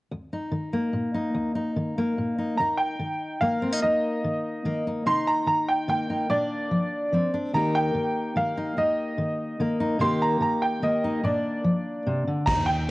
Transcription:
0.12 0.48 D#2 medium
0.33 1.14 D#4 soft
0.52 0.89 D#3 soft
0.73 1.98 A#3 soft
0.93 1.30 A#2 soft
1.14 1.55 D#4 soft
1.35 1.72 D#2 medium
1.55 2.37 D#4 soft
1.76 2.13 D#3 soft
1.98 2.57 A#3 soft
2.18 2.55 A#2 soft
2.38 2.56 D#4 soft
2.57 2.96 D#2 medium
2.57 3.62 D#4 soft
2.57 2.79 A#5 medium
2.77 3.42 G5 medium
2.99 3.37 D#3 soft
3.41 3.78 D#3 soft
3.41 4.65 A#3 soft
3.41 3.83 F5 medium
3.62 3.72 C4 soft
3.72 3.82 D#4 soft
3.82 4.20 D#2 medium
3.82 4.86 D#4 soft
3.82 4.81 D#5 medium
4.24 4.61 D#3 soft
4.65 5.02 D#3 soft
4.65 5.09 A#3 soft
4.87 5.04 D#4 soft
5.06 5.43 C3 medium
5.06 6.09 D#4 medium
5.06 5.28 C6 medium
5.27 5.46 A#5 medium
5.47 5.84 D#3 soft
5.47 5.69 A#5 medium
5.68 5.88 G5 medium
5.88 6.25 D#3 soft
5.88 7.13 A#3 soft
5.88 6.31 G5 medium
6.10 6.28 D#4 soft
6.29 6.67 A#2 medium
6.29 7.32 D4 soft
6.29 7.29 D5 medium
6.71 7.08 F3 soft
7.12 7.49 F3 soft
7.12 7.52 C4 soft
7.34 7.51 D4 soft
7.53 7.90 D#2 medium
7.53 7.94 D#3 soft
7.53 8.36 A#3 soft
7.53 8.57 D#4 soft
7.53 10.02 G4 soft
7.53 7.75 A#5 medium
7.75 8.32 G5 medium
7.94 8.32 D#3 soft
8.36 8.73 D#3 medium
8.36 9.60 A#3 soft
8.36 8.79 F5 medium
8.57 8.77 D#4 soft
8.77 9.14 D#2 medium
8.77 9.79 D#4 soft
8.77 9.76 D#5 medium
9.18 9.55 D#3 soft
9.60 9.97 D#3 soft
9.60 10.00 A#3 soft
9.80 9.98 D#4 medium
9.99 10.37 C3 medium
9.99 10.39 D#3 soft
9.99 10.83 A#3 soft
9.99 11.03 D#4 soft
9.99 11.22 G4 medium
9.99 10.22 C6 medium
10.22 10.41 A#5 medium
10.40 10.78 D#3 medium
10.40 10.63 A#5 medium
10.62 10.83 G5 medium
10.82 11.20 D#3 soft
10.82 12.10 A#3 soft
10.82 11.26 D#5 medium
11.04 11.22 D#4 soft
11.24 11.61 A#2 medium
11.24 12.46 D4 soft
11.24 12.23 D5 medium
11.64 12.02 F3 soft
12.07 12.27 C3 soft
12.28 12.48 D3 soft
12.46 12.90 D#2 medium
12.46 12.85 D#2 medium
12.46 12.90 D#4 medium
12.46 12.68 A#5 medium
12.46 kick medium
12.46 crash medium
12.66 12.90 G5 medium

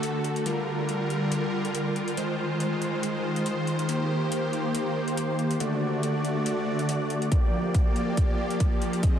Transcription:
0.00 0.44 D3 medium
0.00 0.44 A3 medium
0.00 0.44 F#4 medium
0.00 0.44 A4 medium
0.00 closed hi-hat medium
0.24 closed hi-hat soft
0.36 closed hi-hat soft
0.46 2.16 D3 medium
0.46 2.16 G3 medium
0.46 3.85 F4 medium
0.46 2.16 A#4 medium
0.46 closed hi-hat medium
0.89 closed hi-hat medium
1.10 closed hi-hat soft
1.32 closed hi-hat medium
1.65 closed hi-hat soft
1.75 closed hi-hat medium
1.96 closed hi-hat soft
2.08 closed hi-hat soft
2.17 5.57 D#3 medium
2.17 3.87 G#3 medium
2.17 5.57 C5 medium
2.17 closed hi-hat medium
2.60 closed hi-hat medium
2.82 closed hi-hat soft
3.03 closed hi-hat medium
3.36 closed hi-hat soft
3.46 closed hi-hat medium
3.67 closed hi-hat soft
3.79 closed hi-hat soft
3.89 5.59 A#3 medium
3.89 5.59 G4 medium
3.89 closed hi-hat medium
4.32 closed hi-hat medium
4.53 closed hi-hat soft
4.75 closed hi-hat medium
5.08 closed hi-hat soft
5.17 closed hi-hat medium
5.39 closed hi-hat soft
5.51 closed hi-hat soft
5.60 7.30 D3 medium
5.60 7.30 A3 medium
5.60 7.30 F#4 medium
5.60 7.30 D5 medium
5.60 closed hi-hat medium
6.03 closed hi-hat medium
6.25 closed hi-hat soft
6.46 closed hi-hat medium
6.79 closed hi-hat soft
6.89 closed hi-hat medium
7.10 closed hi-hat soft
7.22 closed hi-hat medium
7.32 9.19 F3 medium
7.32 9.01 A#3 medium
7.32 9.01 G4 medium
7.32 9.01 D5 medium
7.32 kick medium
7.32 closed hi-hat medium
7.75 kick medium
7.75 closed hi-hat medium
7.96 closed hi-hat soft
8.17 kick medium
8.17 closed hi-hat medium
8.51 closed hi-hat medium
8.60 kick medium
8.60 closed hi-hat medium
8.82 closed hi-hat medium
8.93 closed hi-hat medium
9.03 9.19 C4 medium
9.03 9.19 G#4 medium
9.03 9.19 D#5 loud
9.03 kick medium
9.03 closed hi-hat medium

